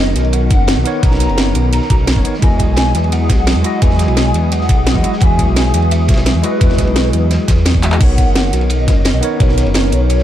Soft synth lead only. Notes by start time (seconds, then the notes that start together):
Already playing: D#5
0.33 F#5
1.03 A#5
1.73 A#5
2.42 G#5
3.12 F#5
3.82 G#5
4.52 F#5
5.22 G#5
5.91 E5
6.44 B4
8.01 F#5
8.70 D#5
9.41 C#5
10.10 C#5